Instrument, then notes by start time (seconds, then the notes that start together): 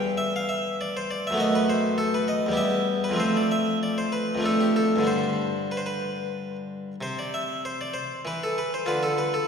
harpsichord
Already playing: E2 E3 G3 G4 G5
0.17 E5
0.36 F5
0.49 E5
0.81 D5
0.97 C5
1.11 D5
1.27 F#2 E5
1.32 A3 B3
1.37 F#4 D#5
1.55 B4
1.69 C5
1.98 A4
2.14 B4
2.28 D#5
2.46 E2 G3
2.52 B3 G4
2.57 E5
3.04 B4
3.09 F2 F3
3.14 A3 C4
3.20 C5
3.37 D5
3.51 E5
3.83 D5
3.98 C5
4.12 B4
4.35 F2 F3
4.40 A3 D4
4.45 A4
4.61 G4
4.76 A4
4.96 G2 D3
5.01 G3 D4
5.07 C5
5.71 B4
5.77 C5
5.86 B4
7.01 C3 C5
7.19 D5
7.34 E5
7.65 C5
7.81 D5
7.94 C5
8.25 E3 B4
8.43 A4
8.58 B4
8.74 C5
8.86 D3 F4 B4
9.03 A4
9.18 B4
9.34 A4